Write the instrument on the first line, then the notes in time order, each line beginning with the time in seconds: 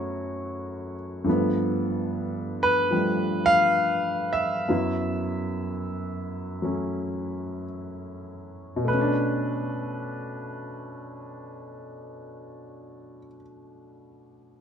grand piano
Already playing: F#2 F#3 A3 B3 C#4 E4 F#4 C#5
1.24 G2 F3 A3
1.29 B3
2.63 B4
2.91 F3 G3 A3
3.46 F5
4.33 E5
4.68 F#2 F#3 B3 E4
6.62 F#3 A3 C#4
8.76 B2
8.84 A3 B4
8.94 C#4
9.01 D4